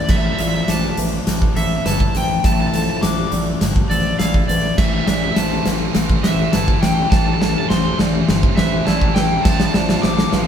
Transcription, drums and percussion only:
0.09 kick, snare, crash
0.39 closed hi-hat
0.68 snare, closed hi-hat
0.97 closed hi-hat
1.27 snare, closed hi-hat
1.42 kick
1.56 closed hi-hat
1.86 snare, closed hi-hat
2.00 kick
2.15 closed hi-hat
2.44 kick, snare, closed hi-hat
2.74 closed hi-hat
3.03 snare, closed hi-hat
3.32 closed hi-hat
3.61 snare, closed hi-hat
3.76 kick
3.91 closed hi-hat
4.20 snare, closed hi-hat
4.34 kick
4.49 closed hi-hat
4.78 kick, snare, crash
5.08 snare, closed hi-hat
5.36 snare, closed hi-hat
5.66 snare, closed hi-hat
5.95 snare, closed hi-hat
6.10 kick
6.24 snare, closed hi-hat
6.53 snare, closed hi-hat
6.68 kick
6.83 snare, closed hi-hat
7.12 kick, snare
7.42 snare
7.70 snare
7.99 snare
8.29 snare
8.43 kick
8.57 snare
8.87 snare
9.01 kick
9.16 snare
9.45 kick, snare, crash
9.60 snare
9.74 snare
9.89 snare
10.03 snare
10.19 snare
10.33 snare

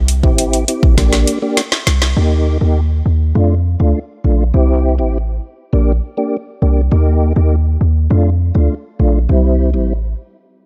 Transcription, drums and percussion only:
0.08 closed hi-hat
0.23 kick
0.38 closed hi-hat
0.53 closed hi-hat
0.68 closed hi-hat
0.83 kick
0.98 kick, snare, closed hi-hat
1.13 snare, closed hi-hat
1.27 closed hi-hat
1.57 snare, closed hi-hat
1.72 snare
1.87 snare, closed hi-hat
2.02 snare

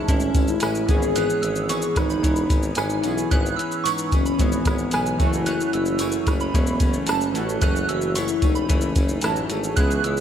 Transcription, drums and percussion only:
0.08 kick, closed hi-hat, tambourine, shaker
0.20 shaker
0.34 kick, closed hi-hat, tambourine, shaker
0.48 shaker
0.60 cross-stick, closed hi-hat, tambourine, shaker
0.75 shaker
0.89 kick, closed hi-hat, tambourine, shaker
1.02 shaker
1.16 closed hi-hat, tambourine, shaker
1.30 shaker
1.43 closed hi-hat, shaker
1.55 shaker
1.69 closed hi-hat, tambourine, shaker
1.82 shaker
1.96 kick, cross-stick, closed hi-hat, tambourine, shaker
2.10 shaker
2.24 kick, closed hi-hat, shaker
2.36 shaker
2.50 kick, closed hi-hat, tambourine, shaker
2.63 shaker
2.75 cross-stick, closed hi-hat, tambourine, shaker
2.90 shaker
3.04 closed hi-hat, tambourine, shaker
3.18 shaker
3.31 kick, closed hi-hat, tambourine, shaker
3.46 shaker
3.59 closed hi-hat, shaker
3.72 shaker
3.85 closed hi-hat, tambourine, shaker
3.98 shaker
4.11 kick, closed hi-hat, tambourine, shaker
4.26 shaker
4.39 kick, closed hi-hat, tambourine, shaker
4.52 shaker
4.65 kick, cross-stick, closed hi-hat, tambourine, shaker
4.78 shaker
4.91 cross-stick, closed hi-hat, tambourine, shaker
5.06 shaker
5.20 kick, closed hi-hat, tambourine, shaker
5.33 shaker
5.46 closed hi-hat, tambourine, shaker
5.60 shaker
5.73 closed hi-hat, shaker
5.86 shaker
5.99 closed hi-hat, tambourine, shaker
6.12 shaker
6.27 kick, cross-stick, closed hi-hat, tambourine, shaker
6.40 shaker
6.54 kick, closed hi-hat, tambourine, shaker
6.67 shaker
6.80 kick, closed hi-hat, tambourine, shaker
6.93 shaker
7.07 cross-stick, closed hi-hat, tambourine, shaker
7.21 shaker
7.35 closed hi-hat, tambourine, shaker
7.49 shaker
7.62 kick, closed hi-hat, tambourine, shaker
7.76 shaker
7.89 closed hi-hat, shaker
8.01 shaker
8.15 closed hi-hat, tambourine, shaker
8.28 shaker
8.42 kick, closed hi-hat, tambourine, shaker
8.55 shaker
8.69 kick, closed hi-hat, shaker
8.81 shaker
8.96 kick, closed hi-hat, tambourine, shaker
9.09 shaker
9.21 cross-stick, closed hi-hat, tambourine, shaker
9.36 shaker
9.50 closed hi-hat, tambourine, shaker
9.64 shaker
9.77 kick, closed hi-hat, tambourine, shaker
9.91 shaker
10.04 closed hi-hat, shaker
10.17 shaker

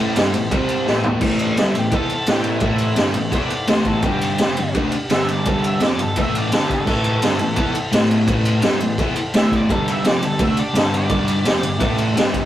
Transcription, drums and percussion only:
0.16 snare, ride
0.34 ride
0.51 kick, ride
0.69 ride
0.87 snare
1.04 floor tom
1.21 kick, crash
1.39 ride
1.57 snare, ride
1.75 ride
1.91 kick, ride
2.09 ride
2.26 snare, ride
2.44 ride
2.60 kick, ride
2.78 ride
2.96 snare, ride
3.14 ride
3.32 kick, ride
3.50 ride
3.67 snare, ride
3.85 kick, ride
4.02 kick, ride
4.21 ride
4.38 snare, ride
4.57 ride
4.75 kick, ride
4.92 ride
5.10 snare, ride
5.28 ride
5.45 kick, ride
5.64 ride
5.80 snare, ride
5.99 ride
6.16 kick, ride
6.35 ride
6.52 snare, ride
6.70 kick, ride
6.87 kick, crash
7.04 ride
7.22 snare, ride
7.39 ride
7.56 kick, ride
7.75 ride
7.92 snare, ride
8.11 ride
8.28 kick, ride
8.45 ride
8.62 snare, ride
8.80 ride
8.98 kick, ride
9.16 ride
9.34 snare, ride
9.52 kick, ride
9.69 kick, ride
9.88 ride
10.04 snare, ride
10.22 ride
10.39 kick, ride
10.57 ride
10.75 snare, ride
10.94 ride
11.09 kick, ride
11.28 ride
11.45 snare, ride
11.63 ride
11.80 kick, ride
11.98 ride
12.17 snare, ride
12.34 kick, ride

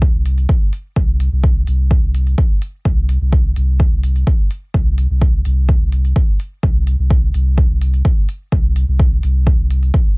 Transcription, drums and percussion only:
0.02 kick
0.26 open hi-hat
0.38 open hi-hat
0.49 kick
0.73 open hi-hat
0.96 kick
1.20 open hi-hat
1.44 kick
1.67 open hi-hat
1.91 kick
2.15 open hi-hat
2.27 open hi-hat
2.38 kick
2.62 open hi-hat
2.85 kick
3.09 open hi-hat
3.33 kick
3.56 open hi-hat
3.80 kick
4.03 open hi-hat
4.16 open hi-hat
4.27 kick
4.51 open hi-hat
4.74 kick
4.98 open hi-hat
5.22 kick
5.45 open hi-hat
5.69 kick
5.92 open hi-hat
6.05 open hi-hat
6.16 kick
6.40 open hi-hat
6.63 kick
6.87 open hi-hat
7.10 kick
7.34 open hi-hat
7.58 kick
7.81 open hi-hat
7.94 open hi-hat
8.05 kick
8.29 open hi-hat
8.52 kick
8.76 open hi-hat
8.99 kick
9.23 open hi-hat
9.47 kick
9.71 open hi-hat
9.83 open hi-hat
9.94 kick

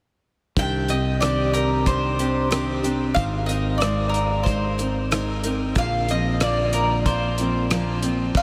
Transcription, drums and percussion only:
0.57 kick, closed hi-hat
0.88 closed hi-hat
1.22 cross-stick, closed hi-hat
1.54 closed hi-hat
1.86 kick, closed hi-hat
2.19 closed hi-hat
2.52 cross-stick, closed hi-hat
2.84 closed hi-hat
3.16 kick, closed hi-hat
3.49 closed hi-hat
3.81 cross-stick, closed hi-hat
4.14 closed hi-hat
4.46 kick, closed hi-hat
4.79 closed hi-hat
5.12 cross-stick, closed hi-hat
5.44 closed hi-hat
5.75 kick, closed hi-hat
6.09 closed hi-hat
6.40 cross-stick, closed hi-hat
6.73 closed hi-hat
7.06 kick, closed hi-hat
7.38 closed hi-hat
7.71 cross-stick, closed hi-hat
8.03 closed hi-hat
8.35 kick, crash

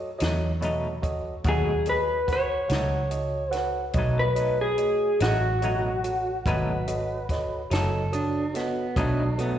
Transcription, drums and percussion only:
0.20 snare, closed hi-hat
0.62 closed hi-hat
1.03 kick, closed hi-hat
1.44 kick, closed hi-hat
1.86 closed hi-hat
2.28 kick, snare, closed hi-hat
2.69 snare, closed hi-hat
3.11 closed hi-hat
3.52 snare, closed hi-hat
3.93 kick, closed hi-hat
4.36 closed hi-hat
4.78 closed hi-hat
5.20 snare, closed hi-hat
5.62 closed hi-hat
6.04 closed hi-hat
6.46 kick, closed hi-hat
6.87 closed hi-hat
7.29 kick, snare, closed hi-hat
7.71 snare, closed hi-hat
8.13 closed hi-hat
8.55 snare, closed hi-hat
8.96 kick, closed hi-hat
9.39 closed hi-hat

